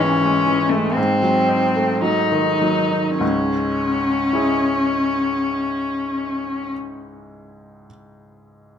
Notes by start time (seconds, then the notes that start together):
Already playing: G#1 G#2 G#3 C#4
0.00 E3
0.24 G#3
0.47 E3
0.69 G#3 A3
0.93 G#2 C4
1.22 F#3
1.49 D#4
1.76 A3
2.01 F#3 D#4
2.32 D#3
2.62 F#3
2.92 D#4
3.18 C#2 G#2 C#4
4.33 E4 G#4
4.37 C#5